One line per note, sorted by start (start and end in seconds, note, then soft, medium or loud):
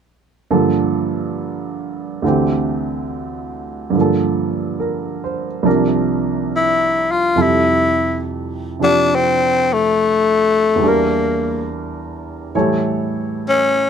0.51 2.23 G2 soft
0.51 2.23 D3 soft
0.51 2.23 F3 soft
0.51 2.23 A#3 soft
0.51 2.23 A4 soft
2.22 3.94 D2 soft
2.22 3.91 D3 soft
2.22 3.96 E3 soft
2.22 3.96 C4 soft
2.28 3.97 G4 soft
3.90 5.63 G2 soft
3.90 5.65 D3 soft
3.95 5.63 F3 soft
3.95 5.67 A#3 soft
4.01 5.69 A4 soft
4.80 5.47 A#4 soft
5.24 5.84 C5 soft
5.63 7.37 C2 soft
5.63 7.35 C3 soft
5.63 7.37 F3 soft
5.63 7.38 D4 soft
5.63 7.38 A#4 soft
6.56 7.13 E4 medium
7.11 7.44 F4 medium
7.35 10.81 F2 soft
7.35 8.78 C3 soft
7.35 10.79 G3 soft
7.35 10.82 E4 soft
7.35 10.82 A4 soft
7.42 8.26 E4 medium
8.79 10.81 C3 soft
8.79 10.82 F3 soft
8.79 10.82 D4 soft
8.79 10.82 G4 soft
8.83 9.17 D4 medium
9.15 9.75 C4 medium
9.73 10.90 A3 medium
10.76 12.50 E2 soft
10.76 12.52 E3 soft
10.80 12.53 G3 soft
10.80 12.54 D4 soft
10.87 11.71 A#3 medium
10.87 12.56 A#4 medium
12.55 13.90 A2 soft
12.55 13.90 E3 soft
12.55 13.90 G3 soft
12.55 13.90 A4 medium
12.55 13.90 C#5 soft
13.49 13.90 C#4 medium